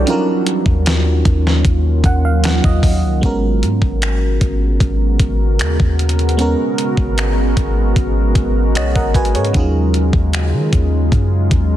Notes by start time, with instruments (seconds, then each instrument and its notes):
Already playing: fm electric piano A4 D5
0.06 ambient pad D#3 F#3 A#3 C#4 F4, fm electric piano F3 C#4 D#4 F4, closed hi-hat
0.10 fm electric piano F#3 A#4
0.47 closed hi-hat
0.66 808-style bass D#2, kick
0.86 snare, closed hi-hat
1.25 808-style bass D#2, kick, closed hi-hat
1.47 snare
1.65 808-style bass D#2, kick, closed hi-hat
2.04 808-style bass D#2, fm electric piano F#5, kick, closed hi-hat
2.25 fm electric piano F5
2.44 fm electric piano F#5, snare, closed hi-hat
2.64 808-style bass D#2, fm electric piano D#5, kick
2.83 kick, open hi-hat
3.04 808-style bass C#2
3.21 808-style bass G#1, ambient pad C#3 G#3 B3 F#4 A#4, fm electric piano G#3 B3 C#4 F#4, kick, closed hi-hat
3.26 fm electric piano A#4
3.63 808-style bass G#2, closed hi-hat
3.82 808-style bass G#1, kick
4.02 finger snap, closed hi-hat
4.41 808-style bass G#1, kick, closed hi-hat
4.80 808-style bass G#1, kick, closed hi-hat
5.20 808-style bass G#1, kick, closed hi-hat
5.59 808-style bass D#2, finger snap, closed hi-hat
5.80 808-style bass D#2, kick
5.99 closed hi-hat
6.09 closed hi-hat
6.19 closed hi-hat
6.29 closed hi-hat
6.37 fm electric piano G#3 B3 C#4 F#4, closed hi-hat
6.42 fm electric piano A#4
6.78 closed hi-hat
6.97 808-style bass G#1, kick
7.18 finger snap, closed hi-hat
7.57 808-style bass G#1, kick, closed hi-hat
7.96 808-style bass G#1, kick, closed hi-hat
8.35 808-style bass G#1, kick, closed hi-hat
8.75 808-style bass B1, fm electric piano C#5 D#5 F#5, finger snap, closed hi-hat
8.96 808-style bass G#1, fm electric piano A#4 D#5 F#5, kick
9.14 fm electric piano F#4 B4 G#5, kick, closed hi-hat
9.25 closed hi-hat
9.35 808-style bass G#2, fm electric piano G#4 C#5, closed hi-hat
9.45 closed hi-hat
9.53 808-style bass D#2, fm electric piano F3 C#4 D#4 F4, ambient pad F#3 D#4 F4, kick, closed hi-hat
9.57 fm electric piano F#3 G#4
9.94 closed hi-hat
10.13 808-style bass D#2, kick
10.33 finger snap, closed hi-hat
10.53 808-style bass D#3
10.73 808-style bass D#2, kick, closed hi-hat
11.12 808-style bass F#2, kick, closed hi-hat
11.51 808-style bass D#2, kick, closed hi-hat